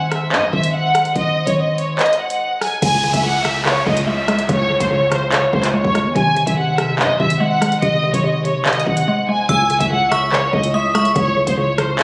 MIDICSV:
0, 0, Header, 1, 8, 480
1, 0, Start_track
1, 0, Key_signature, 4, "minor"
1, 0, Tempo, 416667
1, 1332, Time_signature, 4, 2, 24, 8
1, 13860, End_track
2, 0, Start_track
2, 0, Title_t, "Synth bell"
2, 0, Program_c, 0, 98
2, 10933, Note_on_c, 0, 88, 103
2, 11609, Note_off_c, 0, 88, 0
2, 11653, Note_on_c, 0, 85, 82
2, 12329, Note_off_c, 0, 85, 0
2, 12373, Note_on_c, 0, 87, 75
2, 12600, Note_off_c, 0, 87, 0
2, 12614, Note_on_c, 0, 85, 83
2, 12841, Note_off_c, 0, 85, 0
2, 13860, End_track
3, 0, Start_track
3, 0, Title_t, "Violin section"
3, 0, Program_c, 1, 48
3, 131, Note_on_c, 1, 76, 78
3, 349, Note_off_c, 1, 76, 0
3, 372, Note_on_c, 1, 75, 97
3, 589, Note_off_c, 1, 75, 0
3, 613, Note_on_c, 1, 76, 91
3, 830, Note_off_c, 1, 76, 0
3, 854, Note_on_c, 1, 78, 91
3, 1304, Note_off_c, 1, 78, 0
3, 1332, Note_on_c, 1, 75, 105
3, 1671, Note_off_c, 1, 75, 0
3, 1694, Note_on_c, 1, 73, 86
3, 1801, Note_off_c, 1, 73, 0
3, 1812, Note_on_c, 1, 75, 87
3, 2029, Note_off_c, 1, 75, 0
3, 2052, Note_on_c, 1, 73, 80
3, 2269, Note_off_c, 1, 73, 0
3, 2293, Note_on_c, 1, 75, 100
3, 2510, Note_off_c, 1, 75, 0
3, 2534, Note_on_c, 1, 78, 74
3, 2984, Note_off_c, 1, 78, 0
3, 3014, Note_on_c, 1, 80, 87
3, 3230, Note_off_c, 1, 80, 0
3, 3252, Note_on_c, 1, 80, 112
3, 3591, Note_off_c, 1, 80, 0
3, 3613, Note_on_c, 1, 76, 81
3, 3721, Note_off_c, 1, 76, 0
3, 3733, Note_on_c, 1, 78, 97
3, 3950, Note_off_c, 1, 78, 0
3, 3972, Note_on_c, 1, 76, 84
3, 4189, Note_off_c, 1, 76, 0
3, 4213, Note_on_c, 1, 73, 91
3, 4430, Note_off_c, 1, 73, 0
3, 4454, Note_on_c, 1, 75, 82
3, 4671, Note_off_c, 1, 75, 0
3, 4693, Note_on_c, 1, 76, 78
3, 5144, Note_off_c, 1, 76, 0
3, 5172, Note_on_c, 1, 73, 116
3, 5510, Note_off_c, 1, 73, 0
3, 5532, Note_on_c, 1, 72, 86
3, 5640, Note_off_c, 1, 72, 0
3, 5652, Note_on_c, 1, 73, 91
3, 5869, Note_off_c, 1, 73, 0
3, 5894, Note_on_c, 1, 72, 84
3, 6111, Note_off_c, 1, 72, 0
3, 6133, Note_on_c, 1, 73, 90
3, 6350, Note_off_c, 1, 73, 0
3, 6372, Note_on_c, 1, 72, 81
3, 6589, Note_off_c, 1, 72, 0
3, 6614, Note_on_c, 1, 73, 93
3, 7064, Note_off_c, 1, 73, 0
3, 7093, Note_on_c, 1, 80, 109
3, 7431, Note_off_c, 1, 80, 0
3, 7454, Note_on_c, 1, 76, 82
3, 7562, Note_off_c, 1, 76, 0
3, 7575, Note_on_c, 1, 78, 87
3, 7791, Note_off_c, 1, 78, 0
3, 7813, Note_on_c, 1, 76, 82
3, 8030, Note_off_c, 1, 76, 0
3, 8052, Note_on_c, 1, 75, 98
3, 8269, Note_off_c, 1, 75, 0
3, 8293, Note_on_c, 1, 76, 93
3, 8510, Note_off_c, 1, 76, 0
3, 8532, Note_on_c, 1, 78, 91
3, 8983, Note_off_c, 1, 78, 0
3, 9012, Note_on_c, 1, 75, 109
3, 9350, Note_off_c, 1, 75, 0
3, 9373, Note_on_c, 1, 73, 90
3, 9481, Note_off_c, 1, 73, 0
3, 9494, Note_on_c, 1, 75, 85
3, 9710, Note_off_c, 1, 75, 0
3, 9734, Note_on_c, 1, 73, 83
3, 9950, Note_off_c, 1, 73, 0
3, 9974, Note_on_c, 1, 75, 95
3, 10190, Note_off_c, 1, 75, 0
3, 10213, Note_on_c, 1, 78, 76
3, 10663, Note_off_c, 1, 78, 0
3, 10695, Note_on_c, 1, 80, 85
3, 10911, Note_off_c, 1, 80, 0
3, 10932, Note_on_c, 1, 80, 116
3, 11270, Note_off_c, 1, 80, 0
3, 11292, Note_on_c, 1, 76, 80
3, 11401, Note_off_c, 1, 76, 0
3, 11412, Note_on_c, 1, 78, 98
3, 11629, Note_off_c, 1, 78, 0
3, 11653, Note_on_c, 1, 76, 84
3, 11870, Note_off_c, 1, 76, 0
3, 11894, Note_on_c, 1, 73, 96
3, 12111, Note_off_c, 1, 73, 0
3, 12135, Note_on_c, 1, 75, 83
3, 12351, Note_off_c, 1, 75, 0
3, 12375, Note_on_c, 1, 76, 78
3, 12825, Note_off_c, 1, 76, 0
3, 12853, Note_on_c, 1, 73, 117
3, 13191, Note_off_c, 1, 73, 0
3, 13213, Note_on_c, 1, 72, 84
3, 13321, Note_off_c, 1, 72, 0
3, 13331, Note_on_c, 1, 73, 92
3, 13548, Note_off_c, 1, 73, 0
3, 13573, Note_on_c, 1, 72, 79
3, 13790, Note_off_c, 1, 72, 0
3, 13811, Note_on_c, 1, 73, 91
3, 13860, Note_off_c, 1, 73, 0
3, 13860, End_track
4, 0, Start_track
4, 0, Title_t, "French horn section"
4, 0, Program_c, 2, 60
4, 0, Note_on_c, 2, 56, 79
4, 0, Note_on_c, 2, 63, 73
4, 0, Note_on_c, 2, 72, 94
4, 3055, Note_off_c, 2, 56, 0
4, 3055, Note_off_c, 2, 63, 0
4, 3055, Note_off_c, 2, 72, 0
4, 3251, Note_on_c, 2, 64, 73
4, 3251, Note_on_c, 2, 73, 92
4, 3252, Note_on_c, 2, 56, 84
4, 7053, Note_off_c, 2, 64, 0
4, 7053, Note_off_c, 2, 73, 0
4, 7092, Note_on_c, 2, 63, 76
4, 7092, Note_on_c, 2, 72, 89
4, 10893, Note_off_c, 2, 63, 0
4, 10893, Note_off_c, 2, 72, 0
4, 10931, Note_on_c, 2, 64, 78
4, 10931, Note_on_c, 2, 73, 89
4, 13860, Note_off_c, 2, 56, 0
4, 13860, Note_off_c, 2, 64, 0
4, 13860, Note_off_c, 2, 73, 0
4, 13860, End_track
5, 0, Start_track
5, 0, Title_t, "Synth pluck"
5, 0, Program_c, 3, 84
5, 3252, Note_on_c, 3, 49, 99
5, 3483, Note_off_c, 3, 49, 0
5, 3497, Note_on_c, 3, 49, 88
5, 3715, Note_off_c, 3, 49, 0
5, 3728, Note_on_c, 3, 49, 88
5, 3957, Note_off_c, 3, 49, 0
5, 3970, Note_on_c, 3, 49, 81
5, 4197, Note_off_c, 3, 49, 0
5, 4211, Note_on_c, 3, 49, 100
5, 4443, Note_off_c, 3, 49, 0
5, 4457, Note_on_c, 3, 49, 80
5, 4694, Note_on_c, 3, 56, 90
5, 4917, Note_off_c, 3, 56, 0
5, 4931, Note_on_c, 3, 56, 86
5, 5159, Note_off_c, 3, 49, 0
5, 5173, Note_on_c, 3, 49, 96
5, 5400, Note_off_c, 3, 49, 0
5, 5414, Note_on_c, 3, 49, 80
5, 5638, Note_off_c, 3, 49, 0
5, 5652, Note_on_c, 3, 49, 84
5, 5878, Note_off_c, 3, 49, 0
5, 5892, Note_on_c, 3, 49, 81
5, 6129, Note_off_c, 3, 49, 0
5, 6131, Note_off_c, 3, 56, 0
5, 6143, Note_on_c, 3, 49, 89
5, 6364, Note_off_c, 3, 49, 0
5, 6377, Note_on_c, 3, 49, 85
5, 6610, Note_on_c, 3, 56, 89
5, 6841, Note_off_c, 3, 56, 0
5, 6855, Note_on_c, 3, 56, 85
5, 7087, Note_on_c, 3, 48, 97
5, 7093, Note_off_c, 3, 56, 0
5, 7095, Note_off_c, 3, 49, 0
5, 7319, Note_off_c, 3, 48, 0
5, 7333, Note_on_c, 3, 48, 84
5, 7553, Note_off_c, 3, 48, 0
5, 7566, Note_on_c, 3, 48, 76
5, 7796, Note_off_c, 3, 48, 0
5, 7810, Note_on_c, 3, 48, 81
5, 8035, Note_off_c, 3, 48, 0
5, 8048, Note_on_c, 3, 48, 84
5, 8282, Note_off_c, 3, 48, 0
5, 8296, Note_on_c, 3, 48, 81
5, 8527, Note_on_c, 3, 56, 94
5, 8755, Note_off_c, 3, 56, 0
5, 8768, Note_on_c, 3, 56, 87
5, 8999, Note_off_c, 3, 48, 0
5, 9013, Note_on_c, 3, 48, 98
5, 9244, Note_off_c, 3, 48, 0
5, 9258, Note_on_c, 3, 48, 84
5, 9475, Note_off_c, 3, 48, 0
5, 9488, Note_on_c, 3, 48, 86
5, 9714, Note_off_c, 3, 48, 0
5, 9727, Note_on_c, 3, 48, 75
5, 9956, Note_off_c, 3, 48, 0
5, 9970, Note_off_c, 3, 56, 0
5, 9970, Note_on_c, 3, 48, 92
5, 10197, Note_off_c, 3, 48, 0
5, 10211, Note_on_c, 3, 48, 79
5, 10458, Note_on_c, 3, 56, 88
5, 10685, Note_off_c, 3, 56, 0
5, 10699, Note_on_c, 3, 56, 83
5, 10931, Note_off_c, 3, 48, 0
5, 10934, Note_on_c, 3, 49, 94
5, 10935, Note_off_c, 3, 56, 0
5, 11163, Note_off_c, 3, 49, 0
5, 11177, Note_on_c, 3, 49, 85
5, 11396, Note_off_c, 3, 49, 0
5, 11409, Note_on_c, 3, 49, 87
5, 11638, Note_off_c, 3, 49, 0
5, 11652, Note_on_c, 3, 49, 80
5, 11878, Note_off_c, 3, 49, 0
5, 11892, Note_on_c, 3, 49, 100
5, 12123, Note_off_c, 3, 49, 0
5, 12137, Note_on_c, 3, 49, 79
5, 12375, Note_on_c, 3, 56, 89
5, 12597, Note_off_c, 3, 56, 0
5, 12611, Note_on_c, 3, 56, 83
5, 12839, Note_off_c, 3, 49, 0
5, 12853, Note_on_c, 3, 49, 93
5, 13079, Note_off_c, 3, 49, 0
5, 13093, Note_on_c, 3, 49, 79
5, 13318, Note_off_c, 3, 49, 0
5, 13332, Note_on_c, 3, 49, 88
5, 13557, Note_off_c, 3, 49, 0
5, 13571, Note_on_c, 3, 49, 80
5, 13809, Note_off_c, 3, 49, 0
5, 13812, Note_off_c, 3, 56, 0
5, 13822, Note_on_c, 3, 49, 92
5, 13860, Note_off_c, 3, 49, 0
5, 13860, End_track
6, 0, Start_track
6, 0, Title_t, "808-style bass"
6, 0, Program_c, 4, 38
6, 0, Note_on_c, 4, 32, 111
6, 371, Note_on_c, 4, 44, 99
6, 389, Note_off_c, 4, 32, 0
6, 492, Note_on_c, 4, 32, 100
6, 509, Note_off_c, 4, 44, 0
6, 606, Note_off_c, 4, 32, 0
6, 612, Note_on_c, 4, 32, 108
6, 1303, Note_off_c, 4, 32, 0
6, 1332, Note_on_c, 4, 32, 113
6, 1678, Note_off_c, 4, 32, 0
6, 1691, Note_on_c, 4, 32, 110
6, 2292, Note_off_c, 4, 32, 0
6, 3252, Note_on_c, 4, 37, 108
6, 3598, Note_off_c, 4, 37, 0
6, 3612, Note_on_c, 4, 37, 106
6, 4418, Note_off_c, 4, 37, 0
6, 4452, Note_on_c, 4, 37, 108
6, 5143, Note_off_c, 4, 37, 0
6, 5172, Note_on_c, 4, 37, 111
6, 5518, Note_off_c, 4, 37, 0
6, 5532, Note_on_c, 4, 37, 103
6, 6338, Note_off_c, 4, 37, 0
6, 6373, Note_on_c, 4, 37, 108
6, 6718, Note_off_c, 4, 37, 0
6, 6733, Note_on_c, 4, 37, 105
6, 6972, Note_on_c, 4, 40, 101
6, 6989, Note_off_c, 4, 37, 0
6, 7086, Note_off_c, 4, 40, 0
6, 7092, Note_on_c, 4, 32, 116
6, 7437, Note_off_c, 4, 32, 0
6, 7452, Note_on_c, 4, 32, 112
6, 8052, Note_on_c, 4, 44, 102
6, 8070, Note_off_c, 4, 32, 0
6, 8171, Note_on_c, 4, 32, 101
6, 8189, Note_off_c, 4, 44, 0
6, 8286, Note_off_c, 4, 32, 0
6, 8293, Note_on_c, 4, 32, 111
6, 8983, Note_off_c, 4, 32, 0
6, 9013, Note_on_c, 4, 32, 111
6, 9358, Note_off_c, 4, 32, 0
6, 9372, Note_on_c, 4, 32, 112
6, 9852, Note_on_c, 4, 30, 101
6, 9870, Note_off_c, 4, 32, 0
6, 10033, Note_on_c, 4, 32, 102
6, 10050, Note_off_c, 4, 30, 0
6, 10203, Note_off_c, 4, 32, 0
6, 10214, Note_on_c, 4, 32, 111
6, 10453, Note_off_c, 4, 32, 0
6, 10933, Note_on_c, 4, 37, 112
6, 11278, Note_off_c, 4, 37, 0
6, 11293, Note_on_c, 4, 37, 106
6, 12099, Note_off_c, 4, 37, 0
6, 12133, Note_on_c, 4, 37, 107
6, 12823, Note_off_c, 4, 37, 0
6, 12853, Note_on_c, 4, 37, 115
6, 13198, Note_off_c, 4, 37, 0
6, 13212, Note_on_c, 4, 37, 103
6, 13860, Note_off_c, 4, 37, 0
6, 13860, End_track
7, 0, Start_track
7, 0, Title_t, "Downlifter"
7, 0, Program_c, 5, 103
7, 3252, Note_on_c, 5, 60, 90
7, 7092, Note_off_c, 5, 60, 0
7, 13860, End_track
8, 0, Start_track
8, 0, Title_t, "Drums"
8, 132, Note_on_c, 9, 37, 95
8, 133, Note_on_c, 9, 42, 70
8, 248, Note_off_c, 9, 37, 0
8, 248, Note_off_c, 9, 42, 0
8, 370, Note_on_c, 9, 39, 110
8, 486, Note_off_c, 9, 39, 0
8, 612, Note_on_c, 9, 36, 96
8, 727, Note_off_c, 9, 36, 0
8, 731, Note_on_c, 9, 42, 93
8, 846, Note_off_c, 9, 42, 0
8, 1091, Note_on_c, 9, 37, 88
8, 1093, Note_on_c, 9, 42, 81
8, 1207, Note_off_c, 9, 37, 0
8, 1209, Note_off_c, 9, 42, 0
8, 1211, Note_on_c, 9, 42, 80
8, 1327, Note_off_c, 9, 42, 0
8, 1331, Note_on_c, 9, 42, 72
8, 1332, Note_on_c, 9, 36, 112
8, 1447, Note_off_c, 9, 36, 0
8, 1447, Note_off_c, 9, 42, 0
8, 1692, Note_on_c, 9, 36, 91
8, 1695, Note_on_c, 9, 42, 95
8, 1807, Note_off_c, 9, 36, 0
8, 1810, Note_off_c, 9, 42, 0
8, 2053, Note_on_c, 9, 42, 76
8, 2169, Note_off_c, 9, 42, 0
8, 2291, Note_on_c, 9, 39, 111
8, 2292, Note_on_c, 9, 42, 46
8, 2372, Note_off_c, 9, 42, 0
8, 2372, Note_on_c, 9, 42, 62
8, 2406, Note_off_c, 9, 39, 0
8, 2451, Note_off_c, 9, 42, 0
8, 2451, Note_on_c, 9, 42, 76
8, 2566, Note_off_c, 9, 42, 0
8, 2651, Note_on_c, 9, 42, 92
8, 2766, Note_off_c, 9, 42, 0
8, 3011, Note_on_c, 9, 37, 90
8, 3013, Note_on_c, 9, 46, 60
8, 3127, Note_off_c, 9, 37, 0
8, 3129, Note_off_c, 9, 46, 0
8, 3252, Note_on_c, 9, 36, 118
8, 3252, Note_on_c, 9, 42, 77
8, 3252, Note_on_c, 9, 49, 107
8, 3367, Note_off_c, 9, 36, 0
8, 3367, Note_off_c, 9, 42, 0
8, 3367, Note_off_c, 9, 49, 0
8, 3491, Note_on_c, 9, 42, 82
8, 3607, Note_off_c, 9, 42, 0
8, 3612, Note_on_c, 9, 36, 97
8, 3614, Note_on_c, 9, 42, 95
8, 3727, Note_off_c, 9, 36, 0
8, 3729, Note_off_c, 9, 42, 0
8, 3972, Note_on_c, 9, 37, 94
8, 3973, Note_on_c, 9, 42, 69
8, 4087, Note_off_c, 9, 37, 0
8, 4088, Note_off_c, 9, 42, 0
8, 4211, Note_on_c, 9, 39, 115
8, 4326, Note_off_c, 9, 39, 0
8, 4452, Note_on_c, 9, 36, 95
8, 4568, Note_off_c, 9, 36, 0
8, 4570, Note_on_c, 9, 42, 94
8, 4685, Note_off_c, 9, 42, 0
8, 4931, Note_on_c, 9, 37, 92
8, 4934, Note_on_c, 9, 42, 85
8, 5047, Note_off_c, 9, 37, 0
8, 5049, Note_off_c, 9, 42, 0
8, 5052, Note_on_c, 9, 42, 83
8, 5167, Note_off_c, 9, 42, 0
8, 5172, Note_on_c, 9, 36, 121
8, 5172, Note_on_c, 9, 42, 74
8, 5287, Note_off_c, 9, 42, 0
8, 5288, Note_off_c, 9, 36, 0
8, 5532, Note_on_c, 9, 36, 99
8, 5535, Note_on_c, 9, 42, 96
8, 5647, Note_off_c, 9, 36, 0
8, 5650, Note_off_c, 9, 42, 0
8, 5893, Note_on_c, 9, 37, 96
8, 5894, Note_on_c, 9, 42, 78
8, 6008, Note_off_c, 9, 37, 0
8, 6009, Note_off_c, 9, 42, 0
8, 6132, Note_on_c, 9, 39, 113
8, 6132, Note_on_c, 9, 42, 75
8, 6247, Note_off_c, 9, 42, 0
8, 6248, Note_off_c, 9, 39, 0
8, 6373, Note_on_c, 9, 36, 96
8, 6488, Note_off_c, 9, 36, 0
8, 6491, Note_on_c, 9, 42, 97
8, 6492, Note_on_c, 9, 39, 80
8, 6606, Note_off_c, 9, 42, 0
8, 6607, Note_off_c, 9, 39, 0
8, 6733, Note_on_c, 9, 36, 108
8, 6849, Note_off_c, 9, 36, 0
8, 6853, Note_on_c, 9, 37, 94
8, 6855, Note_on_c, 9, 42, 82
8, 6969, Note_off_c, 9, 37, 0
8, 6971, Note_off_c, 9, 42, 0
8, 7092, Note_on_c, 9, 36, 119
8, 7093, Note_on_c, 9, 42, 74
8, 7208, Note_off_c, 9, 36, 0
8, 7208, Note_off_c, 9, 42, 0
8, 7332, Note_on_c, 9, 42, 80
8, 7447, Note_off_c, 9, 42, 0
8, 7452, Note_on_c, 9, 36, 96
8, 7455, Note_on_c, 9, 42, 96
8, 7567, Note_off_c, 9, 36, 0
8, 7570, Note_off_c, 9, 42, 0
8, 7813, Note_on_c, 9, 37, 96
8, 7814, Note_on_c, 9, 42, 73
8, 7928, Note_off_c, 9, 37, 0
8, 7929, Note_off_c, 9, 42, 0
8, 8052, Note_on_c, 9, 39, 112
8, 8167, Note_off_c, 9, 39, 0
8, 8293, Note_on_c, 9, 36, 97
8, 8408, Note_off_c, 9, 36, 0
8, 8412, Note_on_c, 9, 42, 95
8, 8527, Note_off_c, 9, 42, 0
8, 8774, Note_on_c, 9, 37, 90
8, 8776, Note_on_c, 9, 42, 86
8, 8889, Note_off_c, 9, 37, 0
8, 8891, Note_off_c, 9, 42, 0
8, 8893, Note_on_c, 9, 42, 81
8, 9008, Note_off_c, 9, 42, 0
8, 9013, Note_on_c, 9, 36, 118
8, 9013, Note_on_c, 9, 42, 73
8, 9128, Note_off_c, 9, 36, 0
8, 9128, Note_off_c, 9, 42, 0
8, 9373, Note_on_c, 9, 36, 98
8, 9376, Note_on_c, 9, 42, 96
8, 9488, Note_off_c, 9, 36, 0
8, 9491, Note_off_c, 9, 42, 0
8, 9735, Note_on_c, 9, 42, 74
8, 9850, Note_off_c, 9, 42, 0
8, 9972, Note_on_c, 9, 39, 116
8, 9972, Note_on_c, 9, 42, 47
8, 10053, Note_off_c, 9, 42, 0
8, 10053, Note_on_c, 9, 42, 62
8, 10087, Note_off_c, 9, 39, 0
8, 10133, Note_off_c, 9, 42, 0
8, 10133, Note_on_c, 9, 42, 79
8, 10213, Note_on_c, 9, 36, 96
8, 10248, Note_off_c, 9, 42, 0
8, 10328, Note_off_c, 9, 36, 0
8, 10331, Note_on_c, 9, 42, 96
8, 10447, Note_off_c, 9, 42, 0
8, 10932, Note_on_c, 9, 42, 73
8, 10933, Note_on_c, 9, 36, 120
8, 11048, Note_off_c, 9, 36, 0
8, 11048, Note_off_c, 9, 42, 0
8, 11172, Note_on_c, 9, 42, 81
8, 11287, Note_off_c, 9, 42, 0
8, 11293, Note_on_c, 9, 36, 94
8, 11296, Note_on_c, 9, 42, 95
8, 11408, Note_off_c, 9, 36, 0
8, 11411, Note_off_c, 9, 42, 0
8, 11653, Note_on_c, 9, 37, 95
8, 11654, Note_on_c, 9, 42, 72
8, 11768, Note_off_c, 9, 37, 0
8, 11769, Note_off_c, 9, 42, 0
8, 11892, Note_on_c, 9, 39, 110
8, 12008, Note_off_c, 9, 39, 0
8, 12133, Note_on_c, 9, 36, 94
8, 12248, Note_off_c, 9, 36, 0
8, 12251, Note_on_c, 9, 42, 96
8, 12366, Note_off_c, 9, 42, 0
8, 12612, Note_on_c, 9, 37, 93
8, 12614, Note_on_c, 9, 42, 83
8, 12727, Note_off_c, 9, 37, 0
8, 12729, Note_off_c, 9, 42, 0
8, 12732, Note_on_c, 9, 42, 82
8, 12847, Note_off_c, 9, 42, 0
8, 12852, Note_on_c, 9, 36, 117
8, 12852, Note_on_c, 9, 42, 75
8, 12967, Note_off_c, 9, 36, 0
8, 12967, Note_off_c, 9, 42, 0
8, 13212, Note_on_c, 9, 36, 101
8, 13215, Note_on_c, 9, 42, 97
8, 13327, Note_off_c, 9, 36, 0
8, 13330, Note_off_c, 9, 42, 0
8, 13573, Note_on_c, 9, 37, 97
8, 13574, Note_on_c, 9, 42, 76
8, 13688, Note_off_c, 9, 37, 0
8, 13689, Note_off_c, 9, 42, 0
8, 13811, Note_on_c, 9, 42, 77
8, 13812, Note_on_c, 9, 39, 114
8, 13860, Note_off_c, 9, 39, 0
8, 13860, Note_off_c, 9, 42, 0
8, 13860, End_track
0, 0, End_of_file